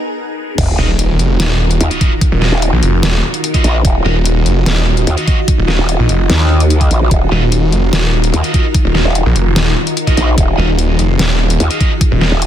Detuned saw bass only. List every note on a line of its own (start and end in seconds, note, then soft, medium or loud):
0.79 1.18 D#1 loud
1.19 1.38 F1 loud
1.40 1.79 D#1 loud
2.32 2.51 D#1 loud
2.73 2.81 A#1 loud
2.83 3.01 F1 loud
3.03 3.22 D#1 medium
4.05 4.44 D#1 loud
4.46 4.65 F1 loud
4.66 5.06 D#1 loud
5.58 5.77 D#1 loud
5.99 6.08 A#1 medium
6.09 6.28 F1 loud
7.32 7.71 D#1 loud
7.72 7.91 F1 loud
7.93 8.32 D#1 medium
8.85 9.04 D#1 loud
9.26 9.34 A#1 loud
9.36 9.55 F1 loud
9.56 9.75 D#1 loud
10.58 10.97 D#1 loud
10.99 11.18 F1 loud
11.19 11.59 D#1 medium
12.11 12.30 D#1 loud